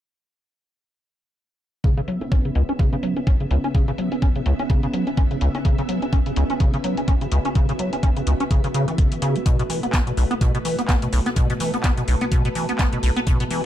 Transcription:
1.84 acid bass C#3, string machine C#3 B3 E5, ambient pad C#4, kick, closed hi-hat
1.97 acid bass C#3, closed hi-hat
2.06 acid bass F#3, ambient pad B4, closed hi-hat
2.21 acid bass C#4, ambient pad F#4, closed hi-hat
2.32 acid bass C#4, kick, closed hi-hat
2.39 ambient pad E5
2.45 acid bass C#3, closed hi-hat
2.55 acid bass C#2, closed hi-hat
2.69 acid bass C#4, closed hi-hat
2.79 acid bass C#3, kick, closed hi-hat
2.93 acid bass C#3, closed hi-hat
3.03 acid bass F#3, closed hi-hat
3.16 acid bass C#4, closed hi-hat
3.20 ambient pad G#5
3.27 acid bass C#4, kick, closed hi-hat
3.40 acid bass C#3, closed hi-hat
3.51 acid bass C#2, closed hi-hat
3.64 acid bass C#4, closed hi-hat
3.75 acid bass C#3, kick, closed hi-hat
3.88 acid bass C#3, closed hi-hat
3.98 acid bass F#3, closed hi-hat
4.12 acid bass C#4, closed hi-hat
4.22 acid bass C#4, kick, closed hi-hat
4.36 acid bass C#3, closed hi-hat
4.46 acid bass C#2, closed hi-hat
4.59 acid bass C#4, closed hi-hat
4.70 acid bass C#3, kick, closed hi-hat
4.83 acid bass C#3, closed hi-hat
4.93 acid bass F#3, closed hi-hat
5.07 acid bass C#4, closed hi-hat
5.17 acid bass C#4, kick, closed hi-hat
5.31 acid bass C#3, closed hi-hat
5.41 acid bass C#2, closed hi-hat
5.55 acid bass C#4, closed hi-hat
5.65 acid bass C#3, kick, closed hi-hat
5.78 acid bass C#3, closed hi-hat
5.89 acid bass F#3, closed hi-hat
6.02 acid bass C#4, closed hi-hat
6.13 acid bass C#4, kick, closed hi-hat
6.26 acid bass C#3, closed hi-hat
6.36 acid bass C#2, closed hi-hat
6.50 acid bass C#4, closed hi-hat
6.60 acid bass C#3, kick, closed hi-hat
6.74 acid bass C#3, closed hi-hat
6.84 acid bass F#3, closed hi-hat
6.97 acid bass C#4, closed hi-hat
7.08 acid bass C#4, kick, closed hi-hat
7.21 acid bass C#3, closed hi-hat
7.32 acid bass C#2, closed hi-hat
7.45 acid bass C#4, closed hi-hat
7.55 acid bass C#3, kick, closed hi-hat
7.69 acid bass C#3, closed hi-hat
7.79 acid bass F#3, closed hi-hat
7.93 acid bass C#4, closed hi-hat
8.03 acid bass C#4, kick, closed hi-hat
8.17 acid bass C#3, closed hi-hat
8.27 acid bass C#2, closed hi-hat
8.40 acid bass C#4, closed hi-hat
8.51 acid bass C#3, kick, closed hi-hat
8.64 acid bass C#3, closed hi-hat
8.74 acid bass C#3, closed hi-hat
8.88 acid bass E3, closed hi-hat
8.98 acid bass C#3, kick, closed hi-hat
9.12 acid bass E3, closed hi-hat
9.22 acid bass C#3, closed hi-hat
9.36 acid bass C#4, closed hi-hat
9.46 acid bass B2, string machine B2 A3 B4, kick, closed hi-hat
9.59 acid bass B2, closed hi-hat
9.70 acid bass E3, closed hi-hat, open hi-hat
9.83 acid bass B3, closed hi-hat
9.93 acid bass B3, kick, snare, clap, closed hi-hat
10.07 acid bass B2, closed hi-hat
10.17 acid bass B1, ambient pad A5, closed hi-hat, open hi-hat
10.31 acid bass B3, closed hi-hat
10.41 acid bass B2, kick, closed hi-hat
10.55 acid bass B2, closed hi-hat
10.65 acid bass E3, closed hi-hat, open hi-hat
10.78 acid bass B3, closed hi-hat
10.88 acid bass B3, kick, snare, clap, closed hi-hat
11.02 acid bass B2, closed hi-hat
11.12 acid bass B1, snare, closed hi-hat, open hi-hat
11.26 acid bass B3, snare, closed hi-hat
11.36 acid bass B2, kick, closed hi-hat
11.50 acid bass B2, closed hi-hat
11.60 acid bass E3, closed hi-hat, open hi-hat
11.74 acid bass B3, closed hi-hat
11.83 acid bass B3, kick, snare, clap, closed hi-hat
11.97 acid bass B2, closed hi-hat
12.08 acid bass B1, closed hi-hat, open hi-hat
12.21 acid bass B3, closed hi-hat
12.31 acid bass B2, kick, closed hi-hat
12.45 acid bass B2, closed hi-hat
12.55 acid bass E3, closed hi-hat, open hi-hat
12.69 acid bass B3, closed hi-hat
12.79 acid bass B3, kick, snare, clap, closed hi-hat
12.93 acid bass B2, closed hi-hat
13.03 acid bass B1, snare, closed hi-hat, open hi-hat
13.16 acid bass B3, closed hi-hat
13.27 acid bass B2, string machine G#3, kick, closed hi-hat
13.40 acid bass B2, closed hi-hat
13.51 acid bass E3, closed hi-hat, open hi-hat

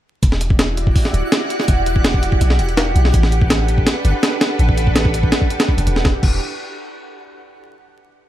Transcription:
0.23 808-style bass E1, string machine E4 F#4 G4 D5, synth texture F#5, kick, closed hi-hat
0.32 snare
0.41 closed hi-hat
0.50 kick
0.59 snare, closed hi-hat
0.77 closed hi-hat
0.87 kick
0.96 kick, open hi-hat
1.05 snare
1.14 808-style bass D1, closed hi-hat
1.32 snare, closed hi-hat
1.50 closed hi-hat
1.60 snare
1.68 808-style bass E1, kick, closed hi-hat
1.86 closed hi-hat
1.96 kick
2.04 snare, closed hi-hat
2.14 kick
2.23 closed hi-hat
2.32 kick
2.41 808-style bass B1, closed hi-hat
2.50 snare
2.59 808-style bass E1, closed hi-hat
2.69 closed hi-hat
2.77 snare, closed hi-hat
2.96 808-style bass B1, closed hi-hat
3.05 snare
3.14 808-style bass A1, string machine D4 A4 B4, kick, closed hi-hat
3.23 snare
3.32 closed hi-hat
3.42 kick
3.50 snare, closed hi-hat
3.68 closed hi-hat
3.78 kick
3.87 snare, closed hi-hat
4.05 808-style bass G1, closed hi-hat
4.23 snare, closed hi-hat
4.41 snare, closed hi-hat
4.59 808-style bass A1, closed hi-hat
4.69 kick
4.78 closed hi-hat
4.87 kick
4.96 snare, closed hi-hat
5.05 kick
5.14 closed hi-hat
5.23 kick
5.32 snare, closed hi-hat
5.41 kick
5.50 closed hi-hat
5.60 snare, closed hi-hat
5.68 kick
5.78 808-style bass E1, closed hi-hat
5.87 808-style bass E1, closed hi-hat
5.96 snare
6.05 808-style bass E1, string machine E4 F#4 G4 D5, kick, snare
6.23 808-style bass E1, kick, crash

